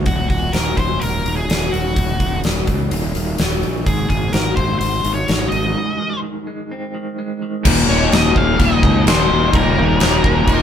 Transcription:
0.06 0.28 D#1 medium
0.06 1.25 D#2 medium
0.06 0.28 F#4 medium
0.06 kick medium
0.06 open hi-hat medium
0.30 0.52 D#1 medium
0.30 1.49 A#2 medium
0.30 0.52 F#4 medium
0.30 kick medium
0.30 open hi-hat soft
0.53 0.76 D#1 medium
0.53 1.24 D#3 medium
0.53 0.78 A#4 medium
0.53 snare medium
0.53 open hi-hat medium
0.77 0.99 D#1 medium
0.77 1.47 F#3 medium
0.77 1.02 C5 medium
0.77 kick medium
0.77 open hi-hat soft
1.01 1.24 D#1 medium
1.01 2.20 A#3 medium
1.01 1.36 A#4 medium
1.01 open hi-hat medium
1.25 1.47 D#1 medium
1.25 1.72 D#3 medium
1.25 open hi-hat soft
1.36 1.70 G#4 medium
1.49 1.71 D#1 medium
1.49 2.67 F#3 medium
1.49 snare loud
1.49 open hi-hat medium
1.72 1.95 D#1 medium
1.72 2.43 D#3 medium
1.72 2.40 F#4 medium
1.72 open hi-hat soft
1.96 2.19 D#1 medium
1.96 3.15 D#2 medium
1.96 kick medium
1.96 open hi-hat medium
2.20 2.42 D#1 medium
2.20 3.39 A#2 medium
2.20 kick medium
2.20 open hi-hat soft
2.44 2.66 D#1 medium
2.44 3.15 D#3 medium
2.44 snare medium
2.44 open hi-hat medium
2.67 2.89 C#2 medium
2.67 3.38 F#3 medium
2.67 kick medium
2.67 open hi-hat soft
2.91 3.14 D#1 medium
2.91 3.87 A#3 medium
2.91 open hi-hat medium
3.15 3.37 D#1 medium
3.15 3.62 D#3 medium
3.15 open hi-hat soft
3.38 3.61 D#1 medium
3.38 3.87 F#3 medium
3.38 snare loud
3.38 open hi-hat medium
3.63 3.85 A#1 medium
3.63 3.87 D#3 medium
3.63 open hi-hat soft
3.86 4.08 G#1 medium
3.86 5.05 G#2 medium
3.86 4.09 G#4 medium
3.86 kick medium
3.86 open hi-hat medium
4.10 4.32 G#1 medium
4.10 4.33 D#3 medium
4.10 4.32 G#4 medium
4.10 kick medium
4.10 open hi-hat soft
4.33 4.56 G#1 medium
4.33 5.04 D#3 medium
4.33 4.56 A#4 medium
4.33 snare loud
4.33 open hi-hat medium
4.56 4.79 G#1 medium
4.56 5.27 G#3 medium
4.56 4.78 C5 medium
4.56 kick medium
4.56 open hi-hat soft
4.79 5.03 G#1 medium
4.79 5.13 C5 medium
4.79 open hi-hat medium
5.04 5.27 G#1 medium
5.04 5.50 D#3 medium
5.04 open hi-hat soft
5.14 5.49 C#5 medium
5.28 5.51 G#1 medium
5.28 6.46 G#3 medium
5.28 snare loud
5.28 open hi-hat medium
5.49 5.74 G#1 medium
5.49 5.98 D#3 medium
5.49 6.18 D#5 medium
5.49 open hi-hat soft
5.75 6.94 G#2 medium
6.00 6.21 D#3 medium
6.23 6.93 D#3 medium
6.47 7.17 G#3 medium
6.71 7.66 C4 medium
6.95 7.41 D#3 medium
7.19 7.66 G#3 medium
7.42 7.66 D#3 medium
7.65 7.88 D#1 loud
7.65 7.88 D#2 medium
7.65 7.88 A#2 loud
7.65 7.90 D#3 loud
7.65 kick loud
7.65 crash loud
7.65 crash medium
7.88 8.11 D#1 medium
7.88 8.12 D#2 medium
7.88 8.12 A#2 medium
7.88 8.14 D#3 medium
7.88 8.11 C#5 loud
8.12 8.35 D#1 loud
8.12 8.35 D#2 medium
8.12 8.35 A#2 medium
8.12 8.36 D#3 loud
8.12 8.38 D#5 loud
8.12 snare loud
8.12 crash medium
8.35 8.58 D#1 loud
8.35 8.57 D#2 loud
8.35 8.58 A#2 medium
8.35 8.59 D#3 loud
8.35 8.61 F5 loud
8.35 kick medium
8.59 8.82 D#1 medium
8.59 8.81 D#2 medium
8.59 8.82 A#2 medium
8.59 8.83 D#3 medium
8.59 9.04 D#5 loud
8.59 kick medium
8.59 crash medium
8.83 9.06 C#2 medium
8.83 9.05 D#2 loud
8.83 9.06 A#2 loud
8.83 9.06 D#3 loud
8.83 kick loud
9.06 9.29 D#1 medium
9.06 9.28 D#2 medium
9.06 9.29 A#2 medium
9.06 9.29 D#3 loud
9.06 9.56 C5 medium
9.06 snare loud
9.06 crash medium
9.29 9.52 D#1 medium
9.29 9.51 D#2 medium
9.29 9.52 A#2 medium
9.29 9.53 D#3 medium
9.53 9.76 D#1 loud
9.53 9.76 D#2 medium
9.53 9.76 A#2 loud
9.53 9.77 D#3 loud
9.53 10.62 A#4 medium
9.53 kick loud
9.53 crash medium
9.77 10.00 D#1 loud
9.77 9.99 D#2 medium
9.77 10.00 A#2 medium
9.77 10.00 D#3 loud
10.00 10.23 D#1 medium
10.00 10.22 D#2 medium
10.00 10.23 A#2 medium
10.00 10.23 D#3 medium
10.00 snare loud
10.00 crash medium
10.23 10.46 D#1 medium
10.23 10.46 D#2 medium
10.23 10.46 A#2 medium
10.23 10.47 D#3 loud
10.23 kick medium
10.47 10.62 D#1 medium
10.47 10.62 D#2 medium
10.47 10.62 A#2 medium
10.47 10.62 D#3 loud
10.47 kick medium
10.47 crash medium

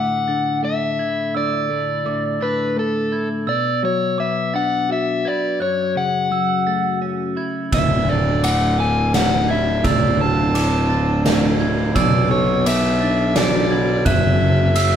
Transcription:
0.00 0.99 D2 soft
0.00 1.69 A2 soft
0.00 0.60 F#5 medium
0.00 0.28 D6 soft
0.28 2.06 D3 soft
0.28 0.99 A6 soft
0.63 2.41 A3 soft
0.63 1.36 E5 medium
0.99 2.77 E4 soft
0.99 1.35 G#6 soft
1.35 3.12 D2 soft
1.35 2.45 D5 medium
1.35 2.06 E6 medium
1.70 2.04 A2 soft
2.05 3.47 A2 soft
2.05 2.41 D6 medium
2.40 3.47 D3 soft
2.40 2.78 B4 medium
2.40 3.12 A6 soft
2.76 3.47 A3 soft
2.76 3.27 A4 medium
3.12 3.48 E4 soft
3.12 3.48 G#6 soft
3.47 5.24 B2 soft
3.47 3.84 D5 medium
3.47 4.18 E6 medium
3.83 5.60 F#3 soft
3.83 4.17 C#5 medium
4.18 5.60 B3 soft
4.18 4.55 E5 medium
4.18 4.54 D6 medium
4.54 5.60 D4 soft
4.54 4.91 F#5 medium
4.54 5.25 A6 medium
4.89 5.60 F#4 soft
4.89 5.27 E5 medium
5.25 5.60 B4 soft
5.25 5.59 D5 medium
5.25 5.60 G#6 soft
5.60 7.37 F#2 medium
5.60 5.94 C#5 medium
5.60 6.31 F#6 medium
5.95 7.72 C#3 soft
5.95 6.99 F#5 medium
6.31 7.73 F#3 soft
6.31 6.67 E6 medium
6.66 9.14 A3 soft
6.66 7.37 A6 soft
7.02 7.73 C#4 soft
7.37 7.76 E4 soft
7.37 7.73 G#6 soft
7.72 9.80 D1 medium
7.72 9.49 D2 soft
7.72 8.10 E5 medium
7.72 8.43 E6 medium
7.72 kick medium
7.72 ride soft
8.08 8.43 A2 soft
8.08 8.42 D5 soft
8.43 10.19 A2 medium
8.43 8.77 F#5 medium
8.43 8.79 D6 medium
8.43 ride soft
8.78 10.55 D3 medium
8.78 9.15 G#5 medium
8.78 9.49 A7 medium
9.14 10.90 A3 soft
9.14 9.47 F#5 medium
9.14 snare medium
9.14 ride soft
9.49 11.25 E4 medium
9.49 9.86 E5 medium
9.49 9.84 G#6 medium
9.84 11.92 D1 medium
9.84 11.61 D2 medium
9.84 10.18 D5 medium
9.84 10.55 E6 medium
9.84 kick medium
9.84 ride soft
10.20 10.55 A2 soft
10.20 11.22 A5 medium
10.55 11.96 A2 medium
10.55 10.90 D6 medium
10.55 ride soft
10.90 11.96 D3 medium
10.90 11.60 A6 medium
11.26 11.96 A3 medium
11.26 snare medium
11.26 ride soft
11.60 11.96 E4 medium
11.60 11.95 G#6 medium
11.95 14.02 B1 medium
11.95 13.72 B2 medium
11.95 12.31 D5 medium
11.95 12.66 E6 medium
11.95 kick medium
11.95 ride soft
12.31 14.06 F#3 medium
12.31 12.64 C#5 medium
12.65 14.06 B3 medium
12.65 13.37 E5 medium
12.65 13.01 D6 medium
12.65 ride soft
13.01 14.07 D4 medium
13.01 13.71 A6 medium
13.36 14.06 F#4 medium
13.36 14.03 D5 medium
13.36 snare medium
13.36 ride soft
13.70 14.07 B4 medium
13.70 14.06 G#6 medium
14.05 14.96 F#1 medium
14.05 14.96 F#2 medium
14.05 14.96 E5 medium
14.05 14.76 F#6 medium
14.05 kick medium
14.05 ride soft
14.42 14.96 C#3 medium
14.76 14.96 F#3 medium
14.76 14.96 E6 medium
14.76 ride medium

